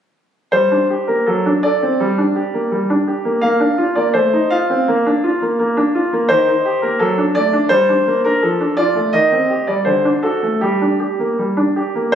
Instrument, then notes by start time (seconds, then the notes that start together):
grand piano
0.52 G3 C5
0.71 D4
0.90 G4
1.07 A#3 A#4
1.26 F#3 A4
1.46 D4
1.63 A4 D5
1.83 C4
2.00 G3
2.18 D4
2.36 G4
2.54 A#3
2.72 G3
2.90 D4
3.08 G4
3.25 A#3
3.41 A#3 F5
3.60 D4
3.78 F4
3.96 A#3 D5
4.14 A3 C5
4.33 D#4
4.50 F4 F5
4.70 C4
4.88 A#3
5.06 D4
5.24 F4
5.42 A#3
5.59 A#3
5.77 D4
5.95 F4
6.13 A#3
6.29 D#3 C5
6.48 D#4
6.65 G4
6.82 A#3 A#4
6.99 F#3 A4
7.18 D4
7.35 A3 D5
7.53 D4
7.69 G3 C5
7.89 D4
8.07 A#3
8.24 D4 A#4
8.42 F3 A4
8.60 D4
8.77 F4 D5
8.95 A3
9.13 D#3 D#5
9.32 C4
9.50 G4
9.67 G3 D5
9.85 D3 C5
10.05 D4
10.23 F#4 A4
10.43 A3
10.61 G3 G4
10.81 D4
11.00 G4
11.20 A#3
11.39 G3
11.57 D4
11.76 G4
11.95 A#3